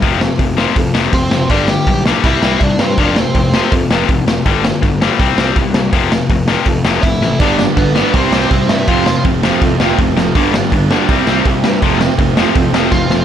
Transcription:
<<
  \new Staff \with { instrumentName = "Lead electric guitar" } { \time 4/4 \key f \lydian \tempo 4 = 163 r2. <c' c''>4 | <d' d''>8 <g' g''>4 r8 <e' e''>4 <d' d''>8 <c' c''>8 | <d' d''>8 <c' c''>4. r2 | r1 |
r2. <e' e''>4 | <d' d''>8 <d' d''>8 <b b'>4 <c' c''>4. <e' e''>8 | <f' f''>4 r2. | r1 |
r2. <f' f''>4 | }
  \new Staff \with { instrumentName = "Distorted electric guitar" } { \clef bass \time 4/4 \key f \lydian r1 | r1 | r1 | r1 |
r1 | <g, d g b d'>8 <g, d g b d'>8 <g, d g b d'>8 <g, d g b d'>8 <c g c' e'>8 <c g c' e'>8 <c g c' e'>8 <c g c' e'>8 | <f, c f a c'>8 <f, c f a c'>8 <f, c f a c'>8 <f, c f a c'>8 <f, c f a c'>8 <f, c f a c'>8 <f, c f a c'>8 <f, c f a c'>8 | <g, d g b d'>8 <g, d g b d'>8 <g, d g b d'>8 <g, d g b d'>8 <c g c' e'>8 <c g c' e'>8 <c g c' e'>8 <c g c' e'>8 |
<f, c f a c'>8 <f, c f a c'>8 <f, c f a c'>8 <f, c f a c'>8 <f, c f a c'>8 <f, c f a c'>8 <f, c f a c'>8 <f, c f a c'>8 | }
  \new Staff \with { instrumentName = "Distorted electric guitar" } { \clef bass \time 4/4 \key f \lydian <f, c f>8 <f, c>8 <f, c>8 <f, c f>8 <f, c>8 <f, c f>8 <f, c>8 <f, c>8 | <g, d g>8 <g, d>8 <g, d>8 <g, d g>8 <c g c'>8 <c g c'>8 <c g>8 <c g>8 | <f, c f>8 <f, c>8 <f, c>8 <f, c f>8 <f, c>8 <f, c f>8 <f, c>8 <f, c>8 | <g, d g>8 <g, d>8 <g, d>8 <g, d g>8 <c g c'>8 <c g c'>8 <c g>8 <c g>8 |
<f, c f>8 <f, c>8 <f, c>8 <f, c f>8 <f, c>8 <f, c f>8 <f, c>8 <f, c>8 | <g, d g>8 <g, d>8 <g, d>8 <g, d g>8 <c g c'>8 <c g c'>8 <c g>8 <c g>8 | <f, c f>8 <f, c>8 <f, c>8 <f, c f>8 <f, c>8 <f, c f>8 <f, c>8 <f, c>8 | <g, d g>8 <g, d>8 <g, d>8 <g, d g>8 <c g c'>8 <c g c'>8 <c g>8 <c g>8 |
<f, c f>8 <f, c>8 <f, c>8 <f, c f>8 <f, c>8 <f, c f>8 <f, c>8 <f, c>8 | }
  \new Staff \with { instrumentName = "Overdriven electric guitar" } { \clef bass \time 4/4 \key f \lydian r1 | r1 | r1 | r1 |
r1 | <g, d g>8 <g, d>8 <g, d>8 <g, d g>8 <c g c'>8 <c g c'>8 <c g>8 <c g>8 | <f, c f>8 <f, c>8 <f, c>8 <f, c f>8 <f, c>8 <f, c f>8 <f, c>8 <f, c>8 | <g, d g>8 <g, d>8 <g, d>8 <g, d g>8 <c g c'>8 <c g c'>8 <c g>8 <c g>8 |
<f, c f>8 <f, c>8 <f, c>8 <f, c f>8 <f, c>8 <f, c f>8 <f, c>8 <f, c>8 | }
  \new Staff \with { instrumentName = "Picked electric bass" } { \clef bass \time 4/4 \key f \lydian f,,4 f,,4 f,8 f,,8 f,,8 fis,,8 | g,,4 b,,4 c,8 c,8 c,8 g,8 | f,,4 f,,4 f,8 f,,8 f,,8 f,,8 | g,,4 g,,4 c,8 c,8 c,8 c,8 |
f,,4 f,,4 f,8 f,,8 f,,8 a,,8 | g,,4 g,,4 c,8 c,8 c,8 g,8 | f,,4 f,,4 f,8 f,,8 f,,8 f,,8 | g,,4 g,,4 c,8 c,8 c,8 g,8 |
f,,4 f,,4 f,8 f,,8 f,,8 f,,8 | }
  \new DrumStaff \with { instrumentName = "Drums" } \drummode { \time 4/4 <hho bd>8 sn8 <hho bd>8 sn8 <hho bd>8 sn8 <hho bd>8 sn8 | <hho bd>8 sn8 <hho bd>8 sn8 <hho bd>8 sn8 <hho bd>8 sn8 | <hho bd>8 sn8 <hho bd>8 sn8 <hho bd>8 sn8 <hho bd>8 sn8 | <hho bd>8 sn8 <hho bd>8 sn8 <hho bd>8 sn8 <hho bd>8 sn8 |
<hho bd>8 sn8 <hho bd>8 sn8 <hho bd>8 sn8 <hho bd>8 sn8 | <hho bd>8 sn8 <hho bd>8 sn8 <hho bd>8 sn8 <hho bd>8 sn8 | <hho bd>8 sn8 <hho bd>8 sn8 <hho bd>8 sn8 <hho bd>8 sn8 | <hho bd>8 sn8 <hho bd>8 sn8 <hho bd>8 sn8 <hho bd>8 sn8 |
<hho bd>8 sn8 <hho bd>8 sn8 <hho bd>8 sn8 <bd sn>8 sn8 | }
>>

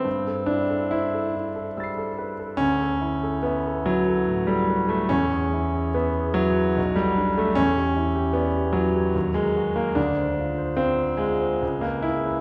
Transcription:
<<
  \new Staff \with { instrumentName = "Grand piano" } { \time 3/4 \key e \dorian \tempo 4 = 72 g,16 a'16 e'16 a'16 c''16 a'16 e'16 a'16 g16 a'16 b'16 a'16 | d,16 a'16 e'16 a'16 e''16 a'16 e'16 a'16 a,16 a'16 b'16 a'16 | e,16 gis'16 e'16 gis'16 e''16 gis'16 e'16 gis'16 b,,16 a'16 d'16 a'16 | e,16 g'16 e'16 g'16 d''16 g'16 e'16 g'16 ees,16 bes'16 ges'16 bes'16 |
d,16 c''16 f'16 c''16 f''16 c''16 f'16 c''16 cis,16 b'16 gis'16 b'16 | }
  \new Staff \with { instrumentName = "Grand piano" } { \time 3/4 \key e \dorian c'8 d'8 e'4 <e''' a''' c''''>4 | cis'4 b8 fis8. g8 a16 | cis'4 b8 fis8. g8 a16 | cis'4 b8 fis8. gis8 bes16 |
d'4 c'8 gis8. bes16 e'8 | }
>>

